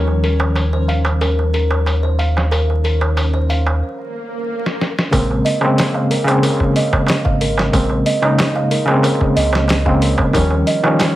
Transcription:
0.00 3.82 D#2 medium
0.00 5.07 D#3 medium
0.00 5.08 F3 medium
0.00 5.09 G3 medium
0.00 3.82 C#4 medium
0.00 5.11 C#4 medium
0.07 darbuka tek soft
0.24 0.71 A#4 medium
0.24 open hi-hat medium
0.40 darbuka tek medium
0.56 open hi-hat medium
0.56 darbuka tek medium
0.73 0.87 C5 medium
0.73 darbuka tek soft
0.88 1.19 F5 medium
0.88 open hi-hat medium
1.05 closed hi-hat soft
1.05 darbuka tek medium
1.21 1.37 A#4 medium
1.21 open hi-hat medium
1.21 darbuka tek medium
1.39 darbuka tek soft
1.54 2.02 A#4 medium
1.54 open hi-hat medium
1.71 darbuka tek medium
1.86 open hi-hat medium
1.86 darbuka tek medium
2.03 2.17 C5 medium
2.03 darbuka tek soft
2.19 2.50 F5 medium
2.19 open hi-hat medium
2.37 snare soft
2.37 darbuka tek medium
2.51 2.68 A#4 medium
2.51 open hi-hat medium
2.51 darbuka tek medium
2.70 darbuka tek soft
2.84 3.32 A#4 medium
2.84 open hi-hat medium
3.01 darbuka tek medium
3.17 open hi-hat medium
3.17 darbuka tek medium
3.33 3.48 C5 medium
3.33 darbuka tek soft
3.50 3.80 F5 medium
3.50 open hi-hat medium
3.67 darbuka tek medium
3.82 swell medium
4.66 snare soft
4.81 snare medium
4.99 snare medium
5.11 5.41 A#1 loud
5.11 5.57 C#3 medium
5.11 5.58 G#3 medium
5.11 5.58 A#3 medium
5.11 5.59 C4 medium
5.11 5.29 A#4 medium
5.11 kick loud
5.11 open hi-hat medium
5.11 darbuka tek medium
5.31 darbuka tek soft
5.45 5.93 D#5 medium
5.45 open hi-hat medium
5.61 6.23 C#3 medium
5.61 6.23 G#3 medium
5.61 6.24 A#3 medium
5.61 6.24 C4 loud
5.61 darbuka tek medium
5.78 snare loud
5.78 open hi-hat medium
5.78 darbuka tek medium
5.94 6.10 F5 medium
5.94 darbuka tek soft
6.11 6.27 A#4 medium
6.11 open hi-hat medium
6.24 7.68 C#3 loud
6.24 7.69 G#3 medium
6.24 7.70 A#3 medium
6.24 closed hi-hat soft
6.24 darbuka tek medium
6.30 7.71 C4 loud
6.43 6.59 A#4 medium
6.43 open hi-hat medium
6.43 darbuka tek medium
6.60 kick medium
6.60 darbuka tek soft
6.76 7.24 D#5 medium
6.76 open hi-hat medium
6.93 kick loud
6.93 darbuka tek medium
7.07 snare loud
7.07 open hi-hat medium
7.07 darbuka tek medium
7.25 7.70 G#1 medium
7.25 7.40 F5 medium
7.25 kick loud
7.25 darbuka tek soft
7.41 7.57 A#4 medium
7.41 open hi-hat medium
7.58 snare soft
7.58 darbuka tek medium
7.73 8.02 A#1 loud
7.73 8.18 C#3 medium
7.73 8.19 G#3 medium
7.73 8.19 A#3 medium
7.73 8.20 C4 medium
7.73 7.90 A#4 medium
7.73 kick loud
7.73 open hi-hat medium
7.73 darbuka tek medium
7.90 darbuka tek soft
8.06 8.54 D#5 medium
8.06 open hi-hat medium
8.22 8.83 C#3 medium
8.22 8.84 G#3 medium
8.22 8.85 A#3 medium
8.22 8.85 D#4 loud
8.22 darbuka tek medium
8.38 snare loud
8.38 open hi-hat medium
8.38 darbuka tek medium
8.55 8.70 F5 medium
8.55 darbuka tek soft
8.71 8.87 A#4 medium
8.71 open hi-hat medium
8.86 9.81 C#3 loud
8.86 9.82 G#3 medium
8.86 9.83 A#3 loud
8.86 darbuka tek medium
8.91 9.83 C4 loud
9.03 9.20 A#4 medium
9.03 open hi-hat medium
9.03 darbuka tek medium
9.21 kick medium
9.21 darbuka tek soft
9.36 10.15 C#2 medium
9.36 9.84 D#5 medium
9.36 open hi-hat medium
9.53 snare soft
9.53 darbuka tek medium
9.68 snare loud
9.68 open hi-hat medium
9.68 darbuka tek medium
9.85 10.30 C#3 medium
9.85 10.31 G#3 medium
9.85 10.31 A#3 medium
9.85 10.32 C4 loud
9.85 10.01 F5 medium
9.85 kick medium
9.85 darbuka tek soft
10.02 10.18 A#4 medium
10.02 open hi-hat medium
10.18 kick medium
10.18 darbuka tek medium
10.33 10.63 D#2 medium
10.33 10.79 D#3 medium
10.33 10.80 F3 medium
10.33 10.80 G3 medium
10.33 10.81 C#4 medium
10.33 10.50 A#4 medium
10.33 kick loud
10.33 open hi-hat medium
10.33 darbuka tek medium
10.50 darbuka tek soft
10.67 11.15 D#5 medium
10.67 open hi-hat medium
10.84 11.16 D#3 loud
10.84 11.16 F3 medium
10.84 11.16 G3 medium
10.84 11.16 C#4 loud
10.84 darbuka tek medium
10.99 snare loud
10.99 open hi-hat medium
10.99 darbuka tek medium

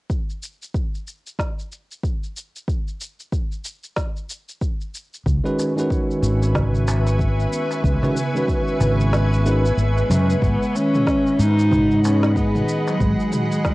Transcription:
0.10 kick medium
0.10 shaker soft
0.30 shaker soft
0.43 shaker medium
0.62 shaker soft
0.75 kick loud
0.75 shaker soft
0.95 shaker soft
1.08 shaker medium
1.27 shaker soft
1.39 kick medium
1.39 snare medium
1.39 shaker soft
1.59 shaker soft
1.72 shaker medium
1.91 shaker soft
2.03 kick medium
2.03 shaker soft
2.23 shaker soft
2.37 shaker medium
2.56 shaker soft
2.68 kick loud
2.68 shaker soft
2.88 shaker soft
3.01 shaker medium
3.20 shaker soft
3.32 kick loud
3.32 shaker soft
3.52 shaker soft
3.65 shaker medium
3.84 shaker soft
3.96 kick medium
3.96 snare medium
3.96 shaker soft
4.16 shaker soft
4.30 shaker medium
4.49 shaker soft
4.61 kick medium
4.61 shaker soft
4.81 shaker soft
4.95 shaker medium
5.14 shaker soft
5.25 5.39 C#2 medium
5.25 10.38 B4 medium
5.25 10.38 E5 medium
5.25 10.38 G#5 medium
5.25 10.38 C#6 medium
5.25 kick loud
5.25 shaker soft
5.44 5.72 D#3 medium
5.44 5.72 G#3 medium
5.44 5.73 C#4 medium
5.44 5.73 F#4 medium
5.44 5.73 B4 medium
5.44 shaker soft
5.59 darbuka tek soft
5.59 shaker medium
5.75 7.98 D#3 medium
5.75 7.98 G#3 medium
5.75 7.99 C#4 medium
5.75 7.99 F#4 medium
5.75 shaker soft
5.80 8.00 B4 medium
5.90 kick loud
5.90 shaker soft
6.11 shaker soft
6.22 7.45 G#1 medium
6.22 shaker medium
6.42 darbuka tek soft
6.42 shaker soft
6.55 kick medium
6.55 snare medium
6.55 darbuka dum medium
6.55 shaker soft
6.75 shaker soft
6.88 darbuka tek medium
6.88 shaker medium
7.07 darbuka ka soft
7.07 shaker soft
7.19 kick medium
7.19 shaker soft
7.40 shaker soft
7.53 shaker medium
7.71 darbuka ka medium
7.71 shaker soft
7.84 7.97 C#2 medium
7.84 kick medium
7.84 shaker soft
8.02 8.15 D#3 medium
8.02 8.16 G#3 medium
8.02 8.16 C#4 medium
8.02 8.16 F#4 medium
8.02 8.16 B4 medium
8.02 darbuka dum medium
8.02 shaker soft
8.17 shaker medium
8.34 9.42 D#3 medium
8.34 9.43 G#3 medium
8.34 9.43 C#4 medium
8.34 9.44 F#4 medium
8.34 shaker soft
8.38 9.44 B4 medium
8.48 kick loud
8.48 shaker soft
8.68 shaker soft
8.80 9.71 G#1 medium
8.80 darbuka dum medium
8.80 shaker medium
9.00 shaker soft
9.13 snare medium
9.13 shaker soft
9.33 shaker soft
9.45 9.63 D#3 medium
9.45 9.64 G#3 medium
9.45 9.64 C#4 medium
9.45 9.64 F#4 medium
9.45 9.64 B4 medium
9.45 shaker medium
9.65 shaker soft
9.77 10.02 G#1 medium
9.77 10.45 G#3 medium
9.77 shaker soft
9.97 darbuka ka soft
9.97 shaker soft
10.10 10.34 F#2 medium
10.10 darbuka dum medium
10.10 shaker medium
10.30 shaker soft
10.42 10.55 G#1 medium
10.42 10.73 G#3 medium
10.42 10.78 B3 loud
10.42 13.74 G#4 medium
10.42 13.74 D#5 medium
10.42 13.74 F#5 medium
10.42 13.74 B5 medium
10.42 kick loud
10.42 shaker soft
10.63 shaker soft
10.74 11.38 D#3 medium
10.74 11.41 C#4 loud
10.74 darbuka tek soft
10.74 shaker medium
10.94 mid tom medium
10.94 shaker soft
11.07 kick loud
11.07 snare medium
11.07 shaker soft
11.27 shaker soft
11.39 12.62 G#2 medium
11.39 11.70 G#3 medium
11.39 12.04 D#4 loud
11.39 shaker medium
11.59 darbuka tek soft
11.59 shaker soft
11.71 12.03 D#4 medium
11.71 kick medium
11.71 mid tom medium
11.71 darbuka dum medium
11.71 shaker soft
11.91 shaker soft
12.04 12.34 C#4 loud
12.04 12.53 D#4 medium
12.04 darbuka tek medium
12.04 shaker medium
12.23 snare medium
12.23 darbuka ka soft
12.23 shaker soft
12.36 13.02 B3 loud
12.36 kick medium
12.36 shaker soft
12.55 12.68 D#3 medium
12.55 mid tom medium
12.55 shaker soft
12.69 shaker medium
12.87 13.00 F#3 medium
12.87 darbuka ka medium
12.87 shaker soft
13.00 13.14 G#1 medium
13.00 13.74 G#3 loud
13.00 13.32 G#3 medium
13.00 kick loud
13.00 shaker soft
13.20 shaker soft
13.32 13.74 D#3 medium
13.32 mid tom medium
13.32 shaker medium
13.52 shaker soft
13.65 kick loud
13.65 snare medium
13.65 shaker soft

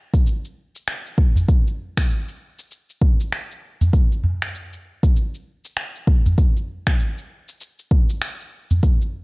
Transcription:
0.14 kick loud
0.14 cabasa medium
0.27 cabasa medium
0.45 cabasa soft
0.75 cabasa medium
0.88 finger snap medium
0.88 cabasa soft
1.06 cabasa soft
1.18 kick medium
1.36 udu medium
1.36 cabasa medium
1.49 kick loud
1.49 cabasa medium
1.67 cabasa soft
1.97 finger snap medium
1.97 kick loud
1.97 cabasa medium
2.10 cabasa medium
2.28 cabasa soft
2.59 cabasa medium
2.71 cabasa medium
2.90 cabasa soft
3.02 kick loud
3.20 cabasa medium
3.33 finger snap medium
3.33 cabasa medium
3.51 cabasa soft
3.81 udu medium
3.81 cabasa medium
3.93 kick loud
3.93 cabasa medium
4.12 cabasa soft
4.24 udu medium
4.42 finger snap medium
4.42 cabasa medium
4.55 cabasa medium
4.73 cabasa soft
5.03 kick loud
5.03 cabasa medium
5.16 cabasa medium
5.34 cabasa soft
5.65 cabasa medium
5.77 finger snap medium
5.77 cabasa medium
5.95 cabasa soft
6.07 kick loud
6.26 udu medium
6.26 cabasa medium
6.38 kick loud
6.38 cabasa medium
6.57 cabasa soft
6.87 finger snap medium
6.87 kick loud
6.87 cabasa medium
6.99 cabasa medium
7.18 cabasa soft
7.48 cabasa medium
7.61 cabasa medium
7.79 cabasa soft
7.91 kick loud
8.10 cabasa medium
8.22 finger snap medium
8.22 cabasa medium
8.40 cabasa soft
8.71 udu medium
8.71 cabasa medium
8.83 kick loud
8.83 cabasa medium
9.01 cabasa soft

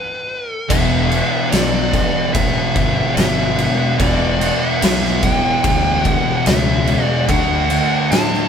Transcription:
0.00 0.49 B4 medium
0.49 0.73 A4 medium
0.69 1.20 E1 loud
0.69 1.10 E2 medium
0.69 1.09 B2 loud
0.69 1.11 E3 loud
0.69 1.50 E5 loud
0.69 kick loud
0.69 crash loud
0.69 crash medium
1.10 1.51 E2 medium
1.10 1.51 B2 medium
1.10 1.52 E3 loud
1.10 crash medium
1.51 2.02 B1 loud
1.51 1.92 E2 medium
1.51 1.92 B2 medium
1.51 1.94 E3 medium
1.51 2.33 D5 medium
1.51 snare loud
1.51 crash loud
1.93 2.33 E2 loud
1.93 2.34 B2 loud
1.93 2.34 E3 loud
1.93 kick medium
1.93 snare soft
1.93 crash medium
2.33 2.60 A1 medium
2.33 2.74 E2 medium
2.33 2.75 B2 medium
2.33 2.75 E3 loud
2.33 3.15 E5 medium
2.33 kick loud
2.33 crash medium
2.75 3.01 G1 medium
2.75 3.15 E2 loud
2.75 3.16 B2 loud
2.75 3.16 E3 loud
2.75 kick medium
2.75 crash medium
3.16 3.67 G1 medium
3.16 3.57 E2 medium
3.16 3.57 B2 loud
3.16 3.58 E3 loud
3.16 3.95 E5 medium
3.16 snare loud
3.16 crash medium
3.58 3.98 E2 medium
3.58 3.98 B2 medium
3.58 3.99 E3 loud
3.58 crash medium
3.99 4.50 E1 loud
3.99 4.39 E2 loud
3.99 4.40 B2 loud
3.99 4.40 E3 loud
3.99 4.60 D5 loud
3.99 kick loud
3.99 crash medium
4.40 4.80 E2 medium
4.40 4.81 B2 loud
4.40 4.81 E3 loud
4.40 crash medium
4.60 5.24 E5 loud
4.82 5.32 B1 medium
4.82 5.21 E2 loud
4.82 5.22 B2 loud
4.82 5.22 E3 medium
4.82 snare loud
4.82 crash loud
5.04 snare soft
5.22 5.63 E2 medium
5.22 5.63 B2 medium
5.22 5.64 E3 loud
5.22 6.07 G5 loud
5.22 kick medium
5.22 crash medium
5.64 6.14 D2 medium
5.64 6.03 E2 medium
5.64 6.04 B2 loud
5.64 6.04 E3 loud
5.64 kick loud
5.64 crash medium
6.05 6.45 E2 loud
6.05 6.46 B2 loud
6.05 6.46 E3 loud
6.05 6.51 F#5 loud
6.05 kick medium
6.05 crash medium
6.46 6.96 C#2 loud
6.46 6.86 E2 medium
6.46 6.87 B2 loud
6.46 6.87 E3 loud
6.46 7.03 E5 loud
6.46 snare loud
6.46 crash medium
6.87 7.26 E2 loud
6.87 7.26 B2 loud
6.87 7.27 E3 loud
6.87 crash medium
7.03 7.25 D5 loud
7.28 7.78 D2 loud
7.28 7.69 D3 loud
7.28 7.69 A3 loud
7.28 7.70 D4 loud
7.28 8.11 F#5 loud
7.28 kick loud
7.28 crash medium
7.70 8.10 D3 loud
7.70 8.10 A3 loud
7.70 8.11 D4 loud
7.70 crash medium
8.11 8.48 A2 medium
8.11 8.48 D3 medium
8.11 8.48 A3 medium
8.11 8.48 D4 medium
8.11 8.48 A5 loud
8.11 snare loud
8.11 crash medium
8.34 snare soft

